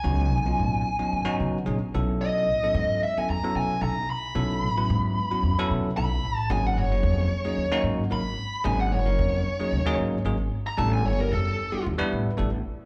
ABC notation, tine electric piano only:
X:1
M:4/4
L:1/16
Q:"Swing 16ths" 1/4=112
K:Cblyd
V:1 name="Tine electric piano"
[G,CDEG]2 z [G,CDEF]3 z [G,CDEG]2 [G,CDEG]2 z [G,CDEA] [EA] [G,CD_F=A]2- | [G,CD_F=A]2 z [G,CDFA]3 z [G,CDFA]2 [G,CDFA]2 z [G,CDFA] [Fc] z2 | [G,CD_F=A]2 z [G,CDFc]3 z [G,CDFG]2 [G,CDFA]2 z [G,CDFA] [FA] z2 | [G,B,DEA]2 z [G,B,DEA]3 z [G,B,DEA]2 [G,B,DEG]2 z [G,B,DEB] [EB] z2 |
[G,B,DEA]2 z [G,B,DEB]3 z [G,B,DEA]2 [G,B,DEA]2 z [G,B,DEA] [EB] z2 | [=G,=B,=D=E=A]2 z [G,B,DE=G]3 z [G,B,DEG]2 [G,B,DE=B]2 z [G,B,DEA] [EB] z2 |]